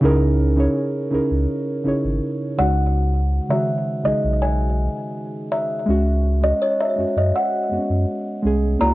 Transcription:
0.01 0.68 C#2 loud
0.01 0.46 C#3 loud
0.01 0.46 C#4 loud
0.01 0.47 D#4 loud
0.01 0.47 E4 loud
0.01 0.48 G#4 loud
0.05 0.48 A#4 loud
0.56 1.01 C#3 medium
0.56 1.01 C#4 medium
0.56 1.02 D#4 medium
0.56 1.02 E4 medium
0.56 1.03 G#4 medium
0.56 1.03 C#5 loud
1.10 1.20 C#2 soft
1.10 1.70 C#3 medium
1.10 1.71 C#4 medium
1.10 1.71 D#4 medium
1.10 1.72 E4 medium
1.10 1.72 G#4 medium
1.15 1.73 A#4 medium
1.31 1.47 C#2 medium
1.84 1.93 G#1 soft
1.84 2.44 C#3 medium
1.84 2.44 C#4 medium
1.84 2.45 D#4 medium
1.84 2.45 E4 medium
1.84 2.45 G#4 medium
1.88 2.46 C#5 medium
2.04 2.20 G#1 medium
2.58 3.40 C#2 medium
2.58 3.32 C#3 medium
2.58 3.33 G#3 medium
2.58 3.33 D#4 medium
2.58 3.53 F#5 medium
2.62 3.34 F#4 medium
3.49 3.94 C#3 medium
3.49 3.95 D#3 medium
3.49 3.94 G#3 medium
3.49 3.96 F#4 medium
3.49 4.01 E5 loud
4.03 4.13 B1 soft
4.03 5.22 C#3 medium
4.03 5.23 G#3 medium
4.03 5.24 D#4 medium
4.03 4.43 D#5 loud
4.07 5.24 G#4 medium
4.24 4.88 B1 medium
4.42 5.55 G#5 loud
5.52 6.46 E5 medium
5.86 6.53 C#2 loud
5.86 6.31 G#3 loud
5.86 6.32 C#4 medium
5.90 6.33 F#4 loud
6.41 6.86 G#3 medium
6.41 6.87 C#4 medium
6.41 6.62 D#5 medium
6.45 6.88 F#4 medium
6.62 6.80 C#5 medium
6.81 7.18 E5 medium
6.96 7.05 F#2 soft
6.96 7.56 G#3 medium
6.96 7.57 C#4 medium
7.00 7.58 F#4 medium
7.16 7.32 F#2 medium
7.16 7.35 D#5 medium
7.36 8.04 F#5 medium
7.69 7.78 F#2 soft
7.69 8.29 G#3 medium
7.69 7.77 B3 soft
7.69 8.31 F#4 medium
7.78 8.33 C#4 medium
7.90 8.06 F#2 medium
8.42 8.77 C2 medium
8.42 8.73 G#3 medium
8.42 8.74 C#4 medium
8.46 8.75 G#4 loud
8.79 8.94 C#2 loud
8.79 8.94 A#3 medium
8.79 8.94 E4 medium
8.79 8.94 A#5 loud
8.83 8.94 F#4 loud

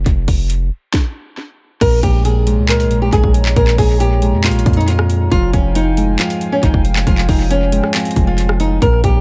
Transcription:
0.06 0.27 F1 loud
0.06 kick loud
0.06 closed hi-hat medium
0.28 0.70 F1 loud
0.28 kick medium
0.28 open hi-hat medium
0.50 closed hi-hat medium
0.94 kick loud
0.94 snare medium
1.81 2.02 A#1 loud
1.81 2.02 A#2 medium
1.81 5.28 G#3 medium
1.81 2.00 A#4 loud
1.81 5.28 C#5 medium
1.81 5.28 A#5 medium
1.81 kick loud
1.81 closed hi-hat medium
1.81 crash loud
2.03 2.59 A#1 loud
2.03 2.24 A#2 medium
2.03 2.21 G4 medium
2.03 kick medium
2.03 closed hi-hat medium
2.25 2.67 A#2 medium
2.25 2.66 G#4 loud
2.25 closed hi-hat medium
2.47 3.56 G#3 loud
2.47 closed hi-hat medium
2.58 2.87 C#2 loud
2.69 2.89 A#2 medium
2.69 3.00 A#4 medium
2.69 clap loud
2.69 closed hi-hat soft
2.80 closed hi-hat medium
2.85 3.11 A#1 loud
2.91 3.55 A#2 medium
2.91 closed hi-hat medium
3.02 3.11 G4 medium
3.13 3.23 A#1 loud
3.13 3.31 G#4 medium
3.13 kick loud
3.13 closed hi-hat medium
3.24 3.55 A#1 loud
3.24 kick medium
3.34 closed hi-hat medium
3.45 clap medium
3.56 3.77 A#1 loud
3.56 3.77 A#2 medium
3.56 3.74 A#4 medium
3.56 kick loud
3.56 closed hi-hat medium
3.67 clap medium
3.78 4.35 A#1 loud
3.78 3.99 A#2 medium
3.78 3.97 G#4 medium
3.78 kick medium
3.78 open hi-hat medium
4.00 4.43 A#2 medium
4.00 4.41 G4 medium
4.00 closed hi-hat loud
4.22 5.32 G#3 loud
4.22 closed hi-hat medium
4.33 4.51 F2 loud
4.44 4.65 A#2 medium
4.44 4.75 F4 medium
4.44 clap loud
4.44 closed hi-hat medium
4.50 4.65 A#1 loud
4.50 closed hi-hat medium
4.59 closed hi-hat medium
4.66 5.29 F2 loud
4.66 5.32 A#2 medium
4.66 kick medium
4.66 closed hi-hat medium
4.73 4.86 D#4 medium
4.73 closed hi-hat medium
4.81 closed hi-hat soft
4.88 5.29 F4 medium
4.88 closed hi-hat medium
4.99 cross-stick loud
5.10 closed hi-hat medium
5.31 5.53 F1 loud
5.31 5.52 F3 medium
5.31 5.50 F4 loud
5.31 8.78 F5 medium
5.31 8.78 G5 medium
5.31 8.78 G#5 medium
5.31 kick loud
5.31 closed hi-hat medium
5.53 6.17 F1 loud
5.53 5.74 F3 medium
5.53 5.72 C#4 medium
5.53 kick medium
5.53 closed hi-hat medium
5.75 6.18 F3 medium
5.75 6.17 D#4 medium
5.75 closed hi-hat loud
5.97 7.07 G#3 medium
5.97 closed hi-hat medium
6.19 6.40 F3 medium
6.19 6.50 F4 medium
6.19 clap loud
6.19 closed hi-hat soft
6.30 closed hi-hat medium
6.41 7.06 F3 medium
6.41 closed hi-hat medium
6.52 6.61 C#4 medium
6.63 6.73 G#1 loud
6.63 6.81 D#4 medium
6.63 kick loud
6.63 closed hi-hat medium
6.74 7.05 F1 loud
6.74 kick medium
6.85 closed hi-hat medium
6.96 clap medium
7.07 7.28 F1 loud
7.07 7.27 F3 medium
7.07 7.25 F4 medium
7.07 kick loud
7.07 closed hi-hat medium
7.18 clap medium
7.28 7.81 F1 loud
7.28 7.49 F3 medium
7.28 7.47 D#4 medium
7.28 kick medium
7.28 open hi-hat medium
7.51 7.93 F3 medium
7.51 7.92 C#4 medium
7.51 closed hi-hat medium
7.72 8.82 G#3 loud
7.72 closed hi-hat medium
7.84 cross-stick medium
7.94 8.15 F3 medium
7.94 8.25 C4 medium
7.94 clap loud
7.94 closed hi-hat soft
8.00 closed hi-hat medium
8.05 closed hi-hat medium
8.11 closed hi-hat medium
8.16 8.79 F1 loud
8.16 8.82 F3 medium
8.16 kick medium
8.16 closed hi-hat medium
8.27 8.58 F4 medium
8.38 closed hi-hat loud
8.49 cross-stick loud
8.60 8.78 D#4 medium
8.60 closed hi-hat medium
8.82 9.03 A#1 loud
8.82 9.03 A#2 medium
8.82 9.21 G#3 medium
8.82 9.00 A#4 loud
8.82 9.21 C#5 medium
8.82 9.21 A#5 medium
8.82 kick loud
8.82 closed hi-hat medium
9.04 9.21 A#1 loud
9.04 9.21 A#2 medium
9.04 9.21 G4 loud
9.04 kick medium
9.04 closed hi-hat medium

